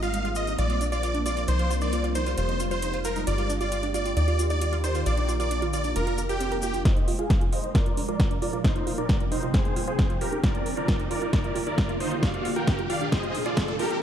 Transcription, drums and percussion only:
0.03 closed hi-hat, cabasa
0.14 closed hi-hat, cabasa
0.25 closed hi-hat
0.35 closed hi-hat, cabasa
0.47 closed hi-hat, cabasa
0.58 closed hi-hat, cabasa
0.70 closed hi-hat
0.81 closed hi-hat, cabasa
0.92 closed hi-hat, cabasa
1.03 closed hi-hat, cabasa
1.15 closed hi-hat
1.26 closed hi-hat, cabasa
1.37 closed hi-hat, cabasa
1.48 closed hi-hat, cabasa
1.59 closed hi-hat
1.71 closed hi-hat, cabasa
1.81 closed hi-hat, cabasa
1.92 closed hi-hat, cabasa
2.04 closed hi-hat
2.15 closed hi-hat, cabasa
2.26 closed hi-hat, cabasa
2.38 closed hi-hat, cabasa
2.49 closed hi-hat
2.60 closed hi-hat, cabasa
2.71 closed hi-hat, cabasa
2.82 closed hi-hat, cabasa
2.94 closed hi-hat
3.05 closed hi-hat, cabasa
3.16 closed hi-hat, cabasa
3.27 closed hi-hat, cabasa
3.38 closed hi-hat
3.50 closed hi-hat, cabasa
3.61 closed hi-hat, cabasa
3.72 closed hi-hat, cabasa
3.83 closed hi-hat
3.94 closed hi-hat, cabasa
4.05 closed hi-hat, cabasa
4.17 closed hi-hat, cabasa
4.28 closed hi-hat
4.39 closed hi-hat, cabasa
4.50 closed hi-hat, cabasa
4.61 closed hi-hat, cabasa
4.73 closed hi-hat
4.84 closed hi-hat, cabasa
4.95 closed hi-hat, cabasa
5.06 closed hi-hat, cabasa
5.17 closed hi-hat
5.29 closed hi-hat, cabasa
5.40 closed hi-hat, cabasa
5.51 closed hi-hat, cabasa
5.62 closed hi-hat
5.73 closed hi-hat, cabasa
5.84 closed hi-hat, cabasa
5.96 closed hi-hat, cabasa
6.07 closed hi-hat
6.18 closed hi-hat, cabasa
6.29 closed hi-hat, cabasa
6.40 closed hi-hat, cabasa
6.52 closed hi-hat
6.62 closed hi-hat, cabasa
6.74 closed hi-hat, cabasa
6.85 kick, snare, closed hi-hat
6.97 closed hi-hat
7.08 open hi-hat
7.19 closed hi-hat
7.30 kick, snare, closed hi-hat
7.41 closed hi-hat
7.53 open hi-hat
7.64 closed hi-hat
7.75 kick, snare, closed hi-hat
7.86 closed hi-hat
7.97 open hi-hat
8.09 closed hi-hat
8.20 kick, snare, closed hi-hat
8.31 closed hi-hat
8.42 open hi-hat
8.53 closed hi-hat
8.64 kick, snare, closed hi-hat
8.76 closed hi-hat
8.87 open hi-hat
8.98 closed hi-hat
9.09 kick, snare, closed hi-hat
9.20 closed hi-hat
9.32 open hi-hat
9.43 closed hi-hat
9.54 kick, snare, closed hi-hat
9.65 closed hi-hat
9.76 open hi-hat
9.88 closed hi-hat
9.99 kick, snare, closed hi-hat
10.10 closed hi-hat
10.21 open hi-hat
10.32 closed hi-hat
10.44 kick, snare, closed hi-hat
10.55 closed hi-hat
10.66 open hi-hat
10.77 closed hi-hat
10.88 kick, snare, closed hi-hat
11.00 closed hi-hat
11.11 open hi-hat
11.33 kick, snare, closed hi-hat
11.44 closed hi-hat
11.55 open hi-hat
11.67 closed hi-hat
11.78 kick, snare, closed hi-hat
11.89 closed hi-hat
12.00 open hi-hat
12.12 closed hi-hat
12.23 kick, snare, closed hi-hat
12.34 closed hi-hat
12.45 open hi-hat
12.56 closed hi-hat
12.67 kick, snare, closed hi-hat
12.79 closed hi-hat
12.90 open hi-hat
13.12 kick, snare, closed hi-hat
13.23 closed hi-hat
13.35 open hi-hat
13.46 closed hi-hat
13.57 kick, snare, closed hi-hat
13.68 closed hi-hat
13.79 open hi-hat
13.91 closed hi-hat

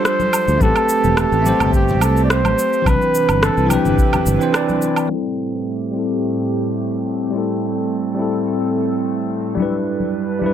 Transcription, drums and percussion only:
0.05 cross-stick, cabasa
0.20 high conga, cabasa
0.33 cabasa, low woodblock
0.48 cabasa
0.61 kick, high conga, cabasa
0.76 cabasa, low woodblock
0.89 cabasa
1.04 high conga, cabasa
1.17 cross-stick, cabasa, low woodblock
1.32 cabasa
1.46 high conga, cabasa
1.60 low conga, cabasa, low woodblock
1.74 kick, cabasa
1.88 high conga, low conga, cabasa
2.01 cabasa, low woodblock
2.17 cabasa
2.30 cross-stick, cabasa
2.45 high conga, cabasa, low woodblock
2.59 cabasa
2.73 cabasa
2.86 kick, high conga, cabasa, low woodblock
3.02 cabasa
3.15 cabasa
3.29 high conga, cabasa, low woodblock
3.43 cross-stick, cabasa
3.57 cabasa
3.70 high conga, cabasa, low woodblock
3.85 low conga, cabasa
3.98 kick, cabasa
4.13 high conga, low conga, cabasa, low woodblock
4.26 cabasa
4.41 cabasa
4.54 cross-stick, cabasa, low woodblock
4.69 high conga, cabasa
4.82 cabasa
4.96 cabasa, low woodblock
9.57 high conga
10.00 high conga
10.42 high conga

